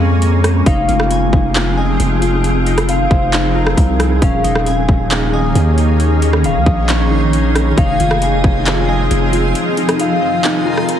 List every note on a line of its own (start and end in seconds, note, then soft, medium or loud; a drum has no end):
0.00 0.62 F2 loud
0.00 0.63 G#3 medium
0.00 0.63 A#3 medium
0.00 0.43 C#4 medium
0.00 0.63 C#4 medium
0.00 0.66 G#4 medium
0.00 1.69 C#5 medium
0.00 1.34 D#5 medium
0.00 0.66 F5 loud
0.22 closed hi-hat medium
0.44 0.66 C#4 medium
0.44 cross-stick loud
0.44 closed hi-hat medium
0.66 0.88 F1 loud
0.66 4.18 F3 medium
0.66 4.18 C4 medium
0.66 2.00 D#4 loud
0.66 4.18 D#4 medium
0.66 10.99 G#4 loud
0.66 2.32 F5 loud
0.66 kick loud
0.66 closed hi-hat medium
0.88 1.31 F1 loud
0.88 1.54 F4 medium
0.88 closed hi-hat medium
1.00 cross-stick loud
1.11 1.76 G#5 loud
1.11 closed hi-hat medium
1.33 1.97 F1 loud
1.33 kick medium
1.55 2.20 F4 medium
1.55 clap loud
1.55 closed hi-hat medium
1.77 3.56 D#5 medium
1.77 3.11 G#5 medium
2.00 3.07 F1 loud
2.00 closed hi-hat medium
2.22 3.54 F4 medium
2.22 closed hi-hat medium
2.44 closed hi-hat medium
2.66 3.32 D#4 medium
2.66 closed hi-hat medium
2.78 cross-stick loud
2.78 closed hi-hat medium
2.88 4.22 F5 medium
2.88 closed hi-hat medium
3.11 3.75 F1 loud
3.11 5.09 C5 medium
3.11 kick medium
3.33 3.98 D#4 medium
3.33 clap loud
3.33 closed hi-hat medium
3.55 4.22 F4 medium
3.55 5.67 A#4 medium
3.67 cross-stick loud
3.77 4.20 C2 loud
3.77 kick medium
3.77 closed hi-hat medium
4.00 4.22 D#4 medium
4.00 6.27 G#4 medium
4.00 cross-stick loud
4.00 closed hi-hat medium
4.22 4.43 D#1 loud
4.22 7.74 D#3 medium
4.22 7.74 A#3 medium
4.22 7.74 C#4 medium
4.22 5.56 C#4 loud
4.22 7.74 D#4 medium
4.22 7.74 C#5 medium
4.22 5.89 F5 medium
4.22 10.99 G#5 loud
4.22 kick loud
4.22 closed hi-hat medium
4.44 4.87 D#1 loud
4.44 5.09 D#4 medium
4.44 closed hi-hat medium
4.55 cross-stick loud
4.66 5.32 G#5 loud
4.66 closed hi-hat medium
4.89 5.53 D#1 loud
4.89 kick medium
5.10 5.76 D#4 loud
5.10 clap loud
5.10 closed hi-hat medium
5.33 6.66 D#5 medium
5.33 6.67 G#5 medium
5.55 6.45 D#2 loud
5.55 closed hi-hat medium
5.78 7.10 D#4 medium
5.78 closed hi-hat medium
6.00 closed hi-hat medium
6.22 6.87 C#4 medium
6.22 closed hi-hat medium
6.33 cross-stick loud
6.44 6.57 C#1 loud
6.44 7.77 F5 medium
6.44 closed hi-hat medium
6.55 6.66 D#2 loud
6.66 7.73 A#1 loud
6.66 8.44 D#5 medium
6.66 kick medium
6.88 7.54 C#4 loud
6.88 8.79 C#5 loud
6.88 clap loud
6.88 closed hi-hat medium
7.11 7.77 D#4 medium
7.33 closed hi-hat medium
7.55 7.78 C#4 medium
7.55 cross-stick loud
7.55 closed hi-hat medium
7.77 7.99 F1 loud
7.77 10.99 F3 medium
7.77 10.99 C4 medium
7.77 10.99 D#4 medium
7.77 9.11 D#4 loud
7.77 10.99 F4 medium
7.77 10.99 D#5 medium
7.77 9.44 F5 loud
7.77 kick loud
7.77 closed hi-hat medium
8.00 8.42 F1 loud
8.00 8.65 F4 medium
8.00 closed hi-hat medium
8.11 cross-stick loud
8.22 8.87 G#5 medium
8.22 closed hi-hat medium
8.44 9.08 F1 loud
8.44 kick medium
8.66 9.32 F4 medium
8.66 clap loud
8.66 closed hi-hat medium
8.89 10.67 D#5 medium
8.89 10.22 G#5 medium
9.11 9.53 F1 loud
9.11 closed hi-hat medium
9.33 10.64 F4 medium
9.33 closed hi-hat medium
9.55 closed hi-hat medium
9.77 10.43 D#4 medium
9.77 closed hi-hat medium
9.89 cross-stick loud
9.89 closed hi-hat medium
9.99 10.99 F5 medium
9.99 closed hi-hat medium
10.22 10.99 C5 medium
10.44 10.99 D#4 loud
10.44 clap loud
10.44 closed hi-hat medium
10.66 10.99 F4 medium
10.66 10.99 A#4 medium
10.77 cross-stick medium
10.89 closed hi-hat medium